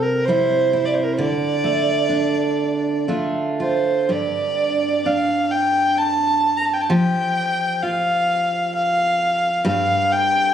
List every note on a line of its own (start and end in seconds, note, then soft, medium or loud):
0.00 1.19 C3 medium
0.00 0.27 G3 medium
0.00 0.27 C4 medium
0.00 0.26 A#4 medium
0.25 1.28 G3 medium
0.25 1.28 C4 medium
0.25 0.87 C5 medium
0.29 0.72 E4 medium
0.73 1.28 E4 medium
0.85 0.96 D5 medium
0.94 1.05 C5 medium
1.04 1.14 A#4 medium
1.13 1.19 C5 medium
1.18 4.68 D3 medium
1.18 3.05 D5 medium
1.64 3.07 A3 medium
2.09 3.08 D4 medium
3.08 4.20 A3 soft
3.08 5.05 D4 soft
3.08 3.59 F4 soft
3.60 4.09 F4 soft
3.60 4.13 C5 medium
4.09 6.90 G2 medium
4.09 6.90 G4 soft
4.09 5.08 D5 medium
5.06 7.00 D4 soft
5.06 5.53 F5 medium
5.51 5.99 G5 medium
5.98 6.58 A5 medium
6.57 6.67 A#5 medium
6.65 6.75 A5 medium
6.73 6.83 G5 medium
6.81 6.92 A5 medium
6.90 9.68 F3 medium
6.90 9.65 G4 medium
6.90 7.84 G5 medium
7.82 10.54 F4 medium
7.82 8.74 F5 medium
8.74 9.61 F5 medium
9.65 10.54 G2 medium
9.65 10.54 G4 medium
9.65 10.14 F5 medium
10.12 10.54 G5 medium